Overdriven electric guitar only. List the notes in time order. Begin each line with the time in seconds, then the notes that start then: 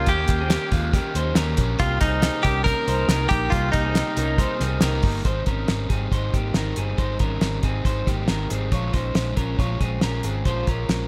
0.06 D#3 A#3 C#4 G4
0.27 A#3 C#4 G4
0.49 D#3 A#3 C#4 G4
0.71 A#3 C#4 G4
0.91 D#3 A#3 C#4 G4
1.14 A#3 C#4 G4
1.35 D#3 A#3 C#4 G4
1.57 A#3 C#4 G4
1.79 C3 G3 A#3 D#4
2.00 G3 A#3 D#4
2.22 C3 G3 A#3 D#4
2.43 G3 A#3 D#4
2.65 C3 G3 A#3 D#4
2.87 G3 A#3 D#4
3.09 C3 G3 A#3 D#4
3.30 G3 A#3 D#4
3.51 C3 G3 A#3 D#4
3.73 G3 A#3 D#4
3.94 C3 G3 A#3 D#4
4.16 G3 A#3 D#4
4.38 C3 G3 A#3 D#4
4.59 G3 A#3 D#4
4.81 C3 G3 A#3 D#4
5.03 G3 A#3 D#4
5.24 G#2 D#3 G3 C4 D#4
5.46 G3 C4 D#4
5.68 D#3 G3 C4 D#4
5.89 G3 C4 D#4
6.11 G#2 D#3 G3 C4 D#4
6.32 G3 C4 D#4
6.53 D#3 G3 C4 D#4
6.75 G3 C4 D#4
6.97 G#2 D#3 G3 C4 D#4
7.19 G3 C4 D#4
7.40 D#3 G3 C4 D#4
7.62 G3 C4 D#4
7.85 G#2 D#3 G3 C4 D#4
8.06 G3 C4 D#4
8.28 D#3 G3 C4 D#4
8.50 G3 C4 D#4
8.71 A#2 F3 G#3 C#4 F4
8.92 G#3 C#4 F4
9.14 F3 G#3 C#4 F4
9.36 G#3 C#4 F4
9.58 A#2 F3 G#3 C#4 F4
9.79 G#3 C#4 F4
10.01 F3 G#3 C#4 F4
10.23 G#3 C#4 F4
10.45 A#2 F3 G#3 C#4 F4
10.67 G#3 C#4 F4
10.89 F3 G#3 C#4 F4